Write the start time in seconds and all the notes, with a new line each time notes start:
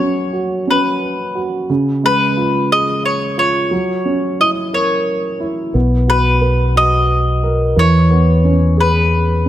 Already playing: F#3 C#5
0.00 C#4
0.33 F#4
0.67 C#4 B4
1.35 F#4
1.70 C#3
2.04 G#3 B4
2.37 F4
2.72 G#4 D#5
3.05 C#5
3.38 F4 C#5
3.71 F#3
4.05 C#4
4.40 E4 D#5
4.73 A#4 C#5
5.40 E4
5.74 B1 B3
6.08 F#4 B4
6.41 B4
6.76 F#4 D#5
7.43 A#4
7.76 E2 E3 C#5
8.11 B3
8.45 C#4
8.77 G#4 B4
9.46 C#4